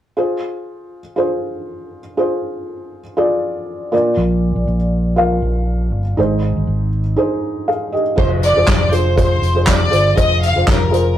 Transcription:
0.17 1.00 F4 medium
0.17 1.00 G#4 medium
0.17 1.01 C5 medium
1.16 2.00 F4 medium
1.16 2.00 G#4 medium
1.16 2.01 C5 medium
2.17 3.00 F4 medium
2.17 3.00 G#4 medium
2.17 3.01 C5 medium
3.17 3.90 F4 medium
3.17 3.93 G#4 medium
3.17 3.92 D5 medium
3.92 4.64 A#2 medium
3.92 4.75 F4 medium
3.92 4.75 A#4 medium
3.92 4.76 D5 medium
4.17 4.54 A#1 medium
4.56 4.66 A#1 medium
4.67 5.39 A#1 medium
5.16 6.00 F4 medium
5.16 6.00 A#4 medium
5.16 6.01 F5 medium
5.42 5.93 A#1 medium
5.93 6.16 G1 medium
6.17 6.54 G#1 medium
6.17 6.89 G#2 medium
6.17 7.00 D#4 medium
6.17 7.01 G#4 medium
6.17 7.02 C5 medium
6.57 6.67 G#1 medium
6.67 7.15 G#1 medium
7.16 8.00 D#4 medium
7.16 7.67 G#4 medium
7.16 7.68 C5 medium
7.68 7.92 G#4 soft
7.68 7.92 F5 medium
7.92 8.41 G4 soft
7.92 8.40 D#5 medium
8.16 8.54 F1 medium
8.16 8.48 F4 medium
8.16 8.49 G#4 medium
8.16 8.29 C5 medium
8.16 8.49 C5 medium
8.16 kick medium
8.16 crash medium
8.43 8.90 D5 medium
8.43 closed hi-hat medium
8.55 8.67 F1 medium
8.55 8.86 F4 soft
8.55 8.87 G#4 soft
8.55 8.87 C5 medium
8.67 9.39 F1 medium
8.67 kick loud
8.67 snare medium
8.67 clap medium
8.67 closed hi-hat medium
8.91 9.13 F4 medium
8.91 9.13 G#4 medium
8.91 9.17 C5 medium
8.91 9.14 C5 medium
8.91 closed hi-hat medium
9.16 9.48 F4 medium
9.16 9.49 G#4 medium
9.16 9.49 C5 medium
9.16 9.65 C5 medium
9.16 kick medium
9.16 closed hi-hat medium
9.42 9.89 F1 medium
9.42 closed hi-hat medium
9.55 9.86 F4 medium
9.55 9.86 G#4 soft
9.55 9.87 C5 medium
9.67 10.14 D5 medium
9.67 kick medium
9.67 snare loud
9.67 clap medium
9.67 closed hi-hat medium
9.90 10.16 G1 medium
9.90 10.12 F4 medium
9.90 10.13 G#4 medium
9.90 10.14 C5 medium
9.90 closed hi-hat medium
10.16 10.48 F4 medium
10.16 10.49 G#4 medium
10.16 10.49 C5 medium
10.16 10.43 D#5 medium
10.16 kick medium
10.16 closed hi-hat medium
10.43 10.66 F5 medium
10.43 closed hi-hat medium
10.56 10.67 F1 medium
10.56 10.86 F4 medium
10.56 10.87 G#4 soft
10.56 10.87 C5 medium
10.67 11.18 F1 medium
10.67 11.15 A#4 medium
10.67 kick loud
10.67 snare medium
10.67 clap medium
10.67 closed hi-hat medium
10.91 11.13 F4 medium
10.91 11.13 G#4 medium
10.91 11.14 C5 medium
10.91 closed hi-hat medium

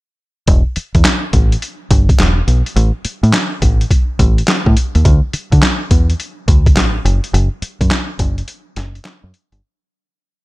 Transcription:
0.47 0.62 E1 loud
0.47 kick loud
0.47 closed hi-hat medium
0.76 muted fingered electric bass stroke soft
0.76 closed hi-hat medium
0.95 1.02 E2 medium
0.95 kick medium
0.95 closed hi-hat medium
1.05 snare loud
1.05 clap medium
1.05 closed hi-hat medium
1.33 1.55 A1 medium
1.33 kick medium
1.33 closed hi-hat medium
1.52 closed hi-hat medium
1.62 closed hi-hat medium
1.91 2.12 G1 loud
1.91 kick loud
1.91 closed hi-hat medium
2.09 kick loud
2.09 closed hi-hat soft
2.19 2.41 E1 medium
2.19 snare loud
2.19 clap medium
2.19 closed hi-hat medium
2.47 2.62 B1 medium
2.47 closed hi-hat medium
2.66 closed hi-hat medium
2.76 2.90 A1 loud
2.76 closed hi-hat medium
3.05 muted fingered electric bass stroke soft
3.05 closed hi-hat medium
3.23 3.31 A2 medium
3.23 closed hi-hat soft
3.33 snare loud
3.33 clap medium
3.33 closed hi-hat medium
3.62 3.84 A1 medium
3.62 kick medium
3.62 closed hi-hat medium
3.81 closed hi-hat medium
3.91 kick medium
3.91 closed hi-hat medium
4.19 4.41 A1 loud
4.19 kick medium
4.19 closed hi-hat medium
4.38 closed hi-hat soft
4.48 snare loud
4.48 clap medium
4.48 closed hi-hat medium
4.66 4.74 A2 loud
4.66 kick medium
4.77 closed hi-hat medium
4.95 5.03 D#2 medium
4.95 closed hi-hat medium
5.05 5.19 D2 loud
5.05 kick loud
5.05 closed hi-hat medium
5.33 muted fingered electric bass stroke soft
5.33 closed hi-hat medium
5.52 5.60 D3 medium
5.52 kick medium
5.52 closed hi-hat soft
5.62 snare loud
5.62 clap medium
5.62 closed hi-hat medium
5.91 6.12 E2 medium
5.91 kick medium
5.91 closed hi-hat medium
6.10 closed hi-hat medium
6.20 closed hi-hat medium
6.48 6.77 D2 medium
6.48 kick medium
6.48 closed hi-hat medium
6.66 kick loud
6.66 closed hi-hat soft
6.77 6.98 A1 medium
6.77 snare loud
6.77 clap medium
6.77 closed hi-hat medium
7.05 7.19 F#1 medium
7.05 closed hi-hat medium
7.24 closed hi-hat medium
7.34 7.48 F#1 medium
7.34 closed hi-hat medium
7.62 muted fingered electric bass stroke soft
7.62 closed hi-hat medium
7.81 7.88 F#2 medium
7.81 kick medium
7.81 closed hi-hat medium
7.91 snare loud
7.91 clap medium
7.91 closed hi-hat medium
8.19 8.41 F#1 medium
8.19 kick medium
8.19 closed hi-hat medium
8.38 closed hi-hat medium
8.48 closed hi-hat medium
8.76 8.98 F#1 medium
8.76 snare medium
8.76 closed hi-hat medium
8.95 closed hi-hat soft
9.05 snare loud
9.05 clap medium
9.05 closed hi-hat medium
9.24 9.31 F#2 medium
9.34 closed hi-hat medium
9.52 9.60 G1 medium
9.52 closed hi-hat medium

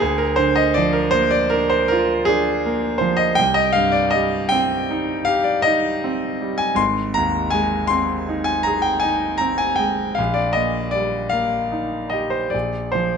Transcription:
0.00 3.33 D2 medium
0.00 0.18 G#4 medium
0.18 0.37 A#4 medium
0.36 0.99 D3 soft
0.36 0.56 C5 medium
0.56 0.75 D#5 medium
0.74 1.38 F3 soft
0.74 0.94 D5 medium
0.93 1.13 A#4 medium
1.11 1.76 A#3 medium
1.11 1.32 C5 medium
1.31 1.52 D5 medium
1.50 2.14 D4 soft
1.50 1.71 A#4 medium
1.70 1.90 C5 medium
1.88 2.50 F4 medium
1.88 2.27 A#4 medium
2.25 2.86 D4 soft
2.25 2.99 G#4 medium
2.66 3.23 A#3 soft
2.98 3.37 F3 soft
2.98 3.18 C5 medium
3.17 3.36 D#5 medium
3.35 6.76 C2 medium
3.35 3.55 G5 medium
3.54 3.74 D#5 medium
3.72 4.37 G2 soft
3.72 3.93 F5 medium
3.92 4.12 D5 medium
4.11 4.75 G3 soft
4.11 4.51 D#5 medium
4.49 5.13 C4 medium
4.49 5.26 G5 medium
4.91 5.51 D#4 soft
5.25 5.88 G4 soft
5.25 5.45 F5 medium
5.44 5.64 D5 medium
5.62 6.26 D#4 soft
5.62 6.58 D#5 medium
6.04 6.64 C4 soft
6.41 6.79 G3 soft
6.58 6.78 G#5 medium
6.75 10.12 G#1 medium
6.75 7.15 C6 medium
7.14 7.75 D#2 soft
7.14 7.52 A#5 medium
7.50 8.12 G#3 soft
7.50 7.89 G#5 medium
7.87 8.50 C4 soft
7.87 8.45 C6 medium
8.29 8.89 D#4 soft
8.44 8.64 G#5 medium
8.63 9.27 G#4 soft
8.63 8.83 A#5 medium
8.82 9.02 G5 medium
9.00 9.64 D#4 soft
9.00 9.39 G#5 medium
9.38 10.03 C4 soft
9.38 9.59 A#5 medium
9.58 9.78 G#5 medium
9.76 10.18 G#3 soft
9.76 10.16 G5 medium
10.15 12.50 A#1 medium
10.15 10.36 F5 medium
10.34 10.55 D5 medium
10.53 11.18 A#2 soft
10.53 10.93 D#5 medium
10.91 11.57 G3 soft
10.91 11.32 D5 medium
11.29 11.96 A#3 soft
11.29 12.11 F5 medium
11.72 12.37 D#4 soft
12.10 12.54 G4 soft
12.10 12.32 D#5 medium
12.30 12.52 C5 medium
12.50 13.17 A#1 soft
12.50 12.93 D5 medium
12.92 13.17 F3 soft
12.92 13.17 C5 medium

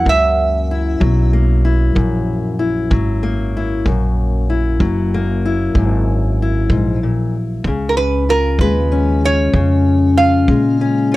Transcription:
0.00 1.00 F#3 medium
0.00 1.33 A#3 medium
0.05 0.98 C#2 medium
0.05 1.95 F#2 medium
0.05 1.31 E5 medium
0.05 kick medium
0.71 1.64 E4 medium
1.00 1.93 B1 medium
1.00 2.90 F#3 medium
1.00 kick medium
1.33 3.22 A#3 medium
1.65 2.58 E4 medium
1.95 2.88 A#1 medium
1.95 3.86 F#2 medium
1.95 kick medium
2.59 3.55 E4 medium
2.91 3.83 G#1 medium
2.91 4.80 F#3 medium
2.91 kick medium
3.23 5.13 A#3 medium
3.57 3.84 E4 medium
3.86 4.78 A#1 medium
3.86 5.75 F#2 medium
3.86 kick medium
4.50 5.44 E4 medium
4.80 5.73 F#1 medium
4.80 7.65 F#3 medium
4.80 kick medium
5.14 7.66 A#3 medium
5.45 6.40 E4 medium
5.75 6.67 G#1 medium
5.75 6.71 F#2 medium
5.75 kick medium
6.42 7.63 E4 medium
6.69 7.62 A#1 medium
6.69 7.03 G#2 medium
6.69 kick medium
7.03 7.34 A#2 medium
7.64 8.57 C#2 medium
7.64 9.54 C#3 medium
7.64 kick medium
7.89 7.96 A#4 medium
7.97 8.29 B4 medium
8.29 9.24 F4 medium
8.29 8.60 A#4 medium
8.59 9.51 D#2 medium
8.59 10.48 G#3 medium
8.59 9.25 B4 medium
8.59 kick medium
8.92 10.81 C#4 medium
9.25 10.17 F4 medium
9.25 10.22 C#5 loud
9.54 10.46 F2 medium
9.54 11.17 C#3 medium
9.54 kick medium
10.18 11.10 F4 medium
10.18 11.08 F5 loud
10.48 11.17 A#2 medium
10.48 11.17 G#3 medium
10.48 kick medium
10.81 11.17 C#4 medium
11.12 11.17 F4 medium

